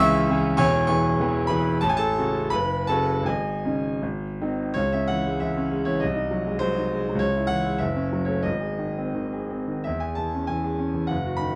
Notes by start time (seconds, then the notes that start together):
Already playing: C#2 C#5 G#5 E6
0.00 E3 C#4 G#4 E5 C#6
0.30 E3 C#4 G#4
0.57 E1 E2 C#5 G#5 C#6
0.87 E3 B3 G#4 C#5 G#5 C#6
1.20 E3 B3 G#4
1.47 E3 B3 G#4 B4 B5
1.81 A1 A5
1.89 G#5
1.97 A4 A5
2.18 C#3 C#4 F#4
2.50 F#1 B4 B5
2.87 C#3 C#4 F#4 A4 A5
3.22 G#1 G#5
3.27 G#4 D#5
3.65 C#3 C#4 D#4
4.02 G#1
4.41 D#3 C4 D#4
4.74 C#2 C#5
4.92 C#4 E5
5.08 E3 F#5
5.26 G#3
5.40 E3 E5
5.57 C#4
5.72 G#3
5.85 E3 C#5
6.00 C2 D#5
6.15 D#4
6.31 F#3
6.47 G#3
6.59 F#3 C5
6.77 D#4
6.94 G#3
7.09 F#3
7.15 C#2
7.19 C#5
7.36 E4
7.47 E3 F#5
7.65 G#3
7.78 F#1 E5
7.96 C#4
8.13 F#3
8.25 A3 C#5
8.43 G#1 D#5
8.61 G#4
8.78 D#3
8.98 C4
9.15 D#3
9.33 G#4
9.51 C4
9.68 D#3
9.84 E2 E5
10.00 G#4 G#5
10.15 E3 A5
10.35 C#4
10.47 E3 G#5
10.64 G#4
10.79 C#4
10.94 E3
11.07 F#1 F#5
11.26 F#4
11.37 D#3 B5